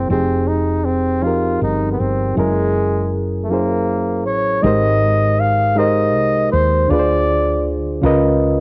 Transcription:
Already playing: reed electric piano C3 C4 E4 G#4 C5, flugelhorn C4
0.08 fretless electric bass F1, reed electric piano F3 C4 D#4 G4, flugelhorn C4
0.13 reed electric piano G#4
0.48 flugelhorn D#4
0.85 flugelhorn C4
1.22 reed electric piano F3 C4 D#4 G4, flugelhorn F4
1.27 reed electric piano A#4
1.61 fretless electric bass G1, flugelhorn D#4
1.92 flugelhorn B3
1.99 fretless electric bass G1, flugelhorn C4
2.35 fretless electric bass F#1, reed electric piano F#3 C#4 E4 G#4, flugelhorn G#3
2.39 reed electric piano A#4
3.43 flugelhorn A3
3.49 reed electric piano F#3 C#4 E4 G#4, flugelhorn A#3
3.54 reed electric piano C5
4.26 fretless electric bass A1, flugelhorn C#5
4.62 fretless electric bass G#1, reed electric piano G#3 D#4 G4 A#4, flugelhorn D#5
4.67 reed electric piano C5
5.40 flugelhorn F5
5.75 reed electric piano G#3 D#4 G4 A#4, flugelhorn D#5
5.80 reed electric piano C5
6.15 fretless electric bass C2
6.52 fretless electric bass D#2, flugelhorn C5
6.88 fretless electric bass D2, reed electric piano D3 D4 F4 G#4, flugelhorn D5
6.93 reed electric piano B4
6.99 reed electric piano C5
8.02 fretless electric bass C#2, reed electric piano C#3 C#4 F4 A#4 B4
8.06 reed electric piano D#5

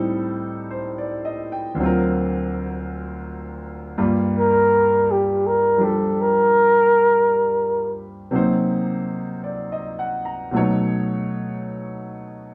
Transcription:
Already playing: grand piano A2 G3 C4 D#4 A4
0.71 grand piano C5
0.98 grand piano D5
1.25 grand piano D#5
1.52 grand piano G5
1.75 grand piano D2 D3 F#3
1.81 grand piano C4 F4
1.86 grand piano A#4
3.98 grand piano G2 G3 A#3 F4
4.39 flugelhorn A#4
5.11 flugelhorn G4
5.47 flugelhorn A#4
5.78 grand piano F3 G3 D4 G4
5.84 flugelhorn A4
6.21 flugelhorn A#4
8.31 grand piano C3 F#3 A#3 D#4
8.36 grand piano C5
9.44 grand piano D5
9.72 grand piano D#5
9.99 grand piano F#5
10.25 grand piano A#5
10.51 grand piano B2 F#3 A3 D#4
10.57 grand piano C#5

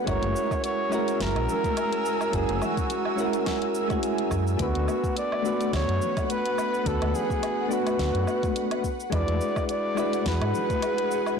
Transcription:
0.04 fingered electric bass F#1, synth keys G#3 C#4 E4 F#4, ambient pad A#4 G#5 E6, muted trumpet C#5, kick, closed hi-hat, low woodblock, shaker
0.09 synth keys A#4
0.22 fingered electric bass F#1, closed hi-hat, high conga
0.36 shaker
0.51 kick, low woodblock, shaker
0.64 muted trumpet C#5, closed hi-hat, shaker
0.90 synth keys G#3 C#4 E4 F#4, high conga, low woodblock, shaker
0.94 synth keys A#4
1.08 closed hi-hat, shaker
1.20 fingered electric bass F#1, muted trumpet A#4, kick, snare, closed hi-hat, shaker
1.35 fingered electric bass A#1, closed hi-hat, low woodblock
1.49 low conga, shaker
1.64 kick, closed hi-hat, high conga, shaker
1.77 closed hi-hat, low woodblock, shaker
1.93 closed hi-hat
2.06 shaker
2.21 low woodblock, shaker
2.31 fingered electric bass F#1, synth keys G#3 C#4 E4 F#4, kick, closed hi-hat, shaker
2.35 muted trumpet G#4, synth keys A#4
2.49 fingered electric bass F#1, closed hi-hat, high conga
2.62 muted trumpet F#4, low conga, low woodblock, shaker
2.77 kick, closed hi-hat, shaker
2.90 closed hi-hat, shaker
3.05 low woodblock
3.16 synth keys G#3 C#4 E4 F#4, high conga, shaker
3.21 synth keys A#4
3.33 closed hi-hat, shaker
3.46 kick, snare, closed hi-hat, low woodblock, shaker
3.62 closed hi-hat
3.75 shaker
3.88 synth keys G#3 C#4 E4 F#4, kick, closed hi-hat, high conga, low woodblock, shaker
3.92 synth keys G#4
4.03 closed hi-hat, shaker
4.18 closed hi-hat
4.31 fingered electric bass F#2, kick, low woodblock, shaker
4.47 shaker
4.57 fingered electric bass D2, synth keys A3 B3 D4 F#4, ambient pad B4 F#5, kick, closed hi-hat, shaker
4.62 muted trumpet F#4, synth keys B4
4.75 fingered electric bass D2, closed hi-hat, high conga
4.88 low woodblock, shaker
5.04 kick, shaker
5.17 muted trumpet D5, closed hi-hat, shaker
5.32 low woodblock
5.42 synth keys A3 B3 D4 F#4, high conga, shaker
5.47 synth keys B4
5.61 closed hi-hat, shaker
5.73 fingered electric bass D2, muted trumpet C#5, kick, snare, closed hi-hat, low woodblock, shaker
5.89 fingered electric bass F#2, closed hi-hat
6.02 low conga, shaker
6.17 kick, closed hi-hat, high conga, low woodblock, shaker
6.25 muted trumpet C#5
6.30 muted trumpet B4, closed hi-hat, shaker
6.46 closed hi-hat
6.58 low woodblock, shaker
6.74 shaker
6.83 fingered electric bass D2, synth keys A3 B3 D4 F#4, kick, closed hi-hat, shaker
6.87 muted trumpet A4, synth keys B4
7.01 fingered electric bass D2, closed hi-hat, high conga, low woodblock
7.14 muted trumpet G#4, low conga, shaker
7.30 kick, shaker
7.43 closed hi-hat, low woodblock, shaker
7.68 synth keys A3 B3 D4 F#4, muted trumpet F#4, high conga, shaker
7.73 synth keys B4
7.87 closed hi-hat, low woodblock, shaker
7.99 fingered electric bass D2, kick, snare, closed hi-hat, shaker
8.15 fingered electric bass F#2, closed hi-hat
8.27 low woodblock, shaker
8.43 kick, closed hi-hat, high conga, shaker
8.56 closed hi-hat, shaker
8.71 closed hi-hat, low woodblock
8.84 ambient pad G#4 F#5, kick, shaker
9.00 shaker
9.10 fingered electric bass E2, synth keys G#3 D4 E4 F#4, muted trumpet D5, kick, closed hi-hat, low woodblock, shaker
9.15 synth keys B4
9.28 fingered electric bass E2, closed hi-hat, high conga
9.41 shaker
9.56 kick, low woodblock, shaker
9.69 muted trumpet D5, closed hi-hat, shaker
9.95 synth keys G#3 D4 E4 F#4, high conga, low woodblock, shaker
10.00 synth keys B4
10.13 closed hi-hat, shaker
10.26 fingered electric bass E2, muted trumpet B4, kick, snare, closed hi-hat, shaker
10.41 fingered electric bass G#2, closed hi-hat, low woodblock
10.54 low conga, shaker
10.70 kick, closed hi-hat, high conga, shaker
10.82 closed hi-hat, low woodblock, shaker
10.98 closed hi-hat
11.11 shaker
11.26 low woodblock, shaker

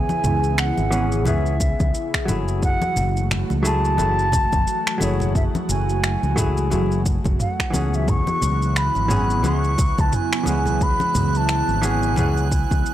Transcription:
Already playing: analog synth pad C#3 B3 E4 G#4, hollow-body jazz guitar E3 B3 C#4 G#4, flute G#5
0.09 high conga, shaker
0.24 fingered electric bass C#2, mid tom, shaker
0.44 shaker
0.58 flute F#5, finger snap, shaker
0.77 fingered electric bass G#1, high conga, shaker
0.91 hollow-body jazz guitar E3 B3 C#4 G#4, shaker
1.12 shaker
1.25 fingered electric bass C#2, hollow-body jazz guitar E3 B3 C#4 G#4, flute E5, mid tom, high conga, shaker
1.46 shaker
1.60 kick, shaker
1.80 fingered electric bass C#2, kick, high conga, shaker
1.94 shaker
2.14 finger snap, kick, shaker
2.25 fingered electric bass F#1, hollow-body jazz guitar F#3 A3 E4, mid tom, high conga, shaker
2.31 hollow-body jazz guitar G#4
2.48 shaker
2.62 analog synth pad E3 F#3 A3 F#4, flute F#5, kick, shaker
2.82 high conga, shaker
2.96 fingered electric bass F#1, low conga, shaker
3.17 shaker
3.31 finger snap, mid tom, shaker
3.50 fingered electric bass C#2, high conga, shaker
3.63 hollow-body jazz guitar F#3 A3 E4 G#4, flute A5, shaker
3.85 shaker
3.97 fingered electric bass F#1, hollow-body jazz guitar F#3 A3 E4 G#4, high conga, shaker
4.19 shaker
4.32 kick, mid tom, low conga, shaker
4.53 fingered electric bass F#1, kick, high conga, shaker
4.67 shaker
4.87 finger snap, shaker
4.98 fingered electric bass F#1, hollow-body jazz guitar F#3 A3 E4, flute C#5, high conga, shaker
5.04 hollow-body jazz guitar G#4
5.20 low conga, shaker
5.35 flute E5, kick, mid tom, shaker
5.55 high conga, shaker
5.69 fingered electric bass F#1, flute G#5, low conga, shaker
5.89 shaker
6.04 finger snap, shaker
6.23 fingered electric bass C#2, high conga, shaker
6.36 hollow-body jazz guitar F#3 A3 E4 G#4, kick, mid tom, shaker
6.57 shaker
6.70 fingered electric bass F#1, hollow-body jazz guitar F#3 A3 E4 G#4, high conga, shaker
6.91 shaker
7.06 kick, shaker
7.24 fingered electric bass F#1, kick, high conga, shaker
7.40 flute F#5, mid tom, shaker
7.60 finger snap, kick, shaker
7.70 fingered electric bass C#2, hollow-body jazz guitar E3 B3 C#4, high conga, shaker
7.76 hollow-body jazz guitar G#4
7.94 flute E5, shaker
8.08 analog synth pad C#3 B3 E4, flute C#6, synth texture F#6, kick, mid tom, shaker
8.27 high conga, shaker
8.42 fingered electric bass C#2, low conga, shaker
8.62 shaker
8.76 flute B5, finger snap, shaker
8.95 fingered electric bass G#1, high conga, shaker
9.08 hollow-body jazz guitar E3 B3 C#4 G#4, mid tom, shaker
9.30 shaker
9.43 fingered electric bass C#2, hollow-body jazz guitar E3 B3 C#4 G#4, flute C#6, high conga, shaker
9.64 shaker
9.78 kick, low conga, shaker
9.98 fingered electric bass C#2, flute A5, kick, high conga, shaker
10.13 flute G#5, mid tom, shaker
10.33 finger snap, shaker
10.43 fingered electric bass C#2, hollow-body jazz guitar E3 B3 C#4, high conga, shaker
10.49 hollow-body jazz guitar G#3
10.66 low conga, shaker
10.81 flute B5, kick, shaker
11.00 high conga, shaker
11.15 fingered electric bass C#2, mid tom, shaker
11.28 flute B5
11.35 flute A5, shaker
11.49 finger snap, shaker
11.68 fingered electric bass G#1, high conga, shaker
11.82 hollow-body jazz guitar E3 B3 C#4 G#4, flute G#5, shaker
12.03 shaker
12.16 fingered electric bass C#2, hollow-body jazz guitar E3 B3 C#4 G#4, mid tom, high conga, shaker
12.37 shaker
12.52 kick, shaker
12.71 fingered electric bass C#2, kick, high conga, shaker
12.86 shaker

